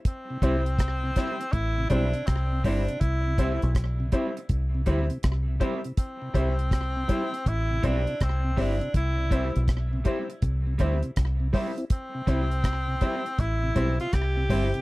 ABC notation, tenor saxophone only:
X:1
M:4/4
L:1/16
Q:"Swing 16ths" 1/4=81
K:C
V:1 name="Tenor saxophone"
C8 E2 D2 C2 D2 | E4 z12 | C8 E2 D2 C2 D2 | E4 z12 |
C8 E3 F G4 |]